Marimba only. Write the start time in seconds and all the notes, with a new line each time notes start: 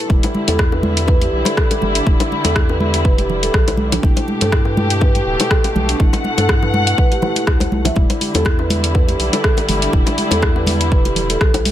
0.47 A4
0.72 B4
1.08 B4
1.21 G4
1.46 A4
1.57 A4
1.95 D4
2.06 E4
2.44 A4
2.55 E4
2.69 B4
3.05 B4
3.18 G4
3.43 A4
3.54 A4
3.92 D4
4.03 E4
4.41 A4
4.52 E4
4.65 B4
5.01 B4
5.15 G4
5.40 A4
5.51 A4
5.88 D4
6.00 E4
6.38 A4
6.49 E4
6.62 B4
6.98 B4
7.12 G4
7.23 E4
7.36 E4
7.85 E5
7.96 E4
8.35 A4
8.46 E4
8.59 B4
8.95 B4
9.08 G4
9.33 A4
9.44 A4
9.82 D4
9.93 E4
10.32 A4
10.42 E4
10.56 B4
10.92 B4
11.05 G4
11.30 A4
11.41 A4